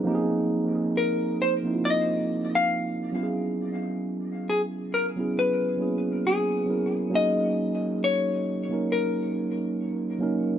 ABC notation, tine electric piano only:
X:1
M:4/4
L:1/16
Q:"Swing 16ths" 1/4=68
K:G#m
V:1 name="Tine electric piano"
[^E,A,^B,D=G^G]6 z [E,A,B,D=E^E]6 z [F,=B,C=EFG]2- | [F,B,CEFG]4- [F,B,CEFG] z2 [F,B,CEG]3 [F,A,B,CEG]4 [F,B,CEA]2 | [F,A,CDG]6 z [F,A,CDA]6 z [F,A,CDA]2 |]